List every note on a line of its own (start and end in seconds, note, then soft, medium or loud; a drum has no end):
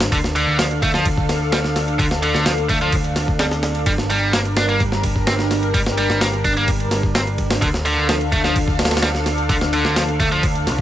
0.00 7.58 D4 medium
0.00 snare loud
0.00 ride medium
0.12 0.44 D2 loud
0.12 0.17 D3 loud
0.12 3.83 A4 medium
0.12 3.83 F5 medium
0.12 kick loud
0.12 ride medium
0.24 snare soft
0.36 0.58 D3 loud
0.36 ride medium
0.47 1.96 D2 loud
0.59 0.63 F3 medium
0.59 snare loud
0.59 ride medium
0.71 ride soft
0.82 0.90 A3 medium
0.82 kick loud
0.82 ride medium
0.94 1.05 F3 medium
0.94 snare soft
1.05 kick loud
1.05 ride medium
1.18 kick loud
1.29 snare soft
1.29 ride medium
1.52 1.57 G3 medium
1.52 snare loud
1.52 ride medium
1.64 snare soft
1.76 snare soft
1.76 ride medium
1.88 ride soft
1.99 2.31 D2 loud
1.99 2.04 D3 loud
1.99 kick loud
1.99 ride medium
2.11 snare medium
2.23 2.45 D3 loud
2.23 ride medium
2.34 3.84 D2 medium
2.34 snare soft
2.46 2.51 F3 medium
2.46 snare loud
2.46 ride medium
2.58 ride soft
2.69 2.77 A3 medium
2.69 kick medium
2.69 ride medium
2.81 2.92 F3 medium
2.81 ride soft
2.92 kick loud
2.92 ride medium
3.04 ride soft
3.16 snare soft
3.16 ride medium
3.28 kick loud
3.39 3.44 G3 medium
3.39 snare loud
3.39 ride medium
3.51 snare soft
3.63 snare soft
3.63 ride medium
3.75 ride soft
3.86 5.71 G1 medium
3.86 3.91 G3 medium
3.86 7.58 G3 medium
3.86 7.58 A#4 medium
3.86 kick loud
3.86 ride medium
3.98 snare soft
4.10 4.33 G3 loud
4.10 ride medium
4.33 4.38 A#3 medium
4.33 snare loud
4.33 ride medium
4.45 ride soft
4.57 4.64 D4 medium
4.57 snare loud
4.57 ride medium
4.69 4.80 A#3 medium
4.69 ride soft
4.80 kick medium
4.80 ride medium
4.92 snare soft
5.03 kick loud
5.03 ride medium
5.16 kick medium
5.27 5.32 C4 medium
5.27 snare loud
5.27 ride medium
5.39 snare soft
5.51 snare soft
5.51 ride medium
5.63 ride soft
5.74 6.06 G1 loud
5.74 5.79 G3 loud
5.74 kick loud
5.74 ride medium
5.86 snare medium
5.98 6.20 G3 loud
5.98 ride medium
6.10 7.59 G1 loud
6.10 snare soft
6.21 6.26 A#3 medium
6.21 snare loud
6.21 ride medium
6.33 ride soft
6.45 6.52 D4 medium
6.45 kick loud
6.45 ride medium
6.57 6.67 A#3 medium
6.57 ride soft
6.68 kick loud
6.68 ride medium
6.80 ride soft
6.91 snare medium
6.91 ride medium
7.03 kick medium
7.15 7.20 C4 medium
7.15 snare loud
7.15 ride medium
7.27 ride soft
7.38 kick medium
7.38 ride medium
7.51 snare loud
7.51 ride medium
7.61 7.94 D2 loud
7.61 7.66 D3 loud
7.61 10.81 D4 medium
7.61 10.81 A4 medium
7.61 10.81 F5 medium
7.61 kick loud
7.61 ride medium
7.74 snare soft
7.85 8.08 D3 loud
7.85 ride medium
7.97 9.46 D2 loud
8.09 8.13 F3 medium
8.09 snare loud
8.09 ride medium
8.21 ride soft
8.32 8.40 A3 medium
8.32 kick loud
8.32 ride medium
8.44 8.55 F3 medium
8.44 snare soft
8.56 kick loud
8.56 ride medium
8.68 kick loud
8.79 snare medium
8.79 ride medium
8.85 snare medium
8.85 ride medium
8.91 snare medium
8.91 ride medium
8.97 snare medium
8.97 ride medium
9.03 9.07 G3 medium
9.03 snare loud
9.03 ride medium
9.15 snare soft
9.26 snare soft
9.26 ride medium
9.38 ride soft
9.49 9.82 D2 loud
9.49 9.54 D3 loud
9.49 kick loud
9.49 ride medium
9.61 snare medium
9.73 9.95 D3 loud
9.73 ride medium
9.85 10.68 D2 loud
9.85 snare soft
9.96 10.01 F3 medium
9.96 snare loud
9.96 ride medium
10.08 ride soft
10.20 10.27 A3 medium
10.20 kick medium
10.20 ride medium
10.32 10.42 F3 medium
10.32 ride soft
10.43 kick loud
10.43 ride medium
10.55 ride soft
10.67 10.81 C2 medium
10.67 snare soft
10.67 ride medium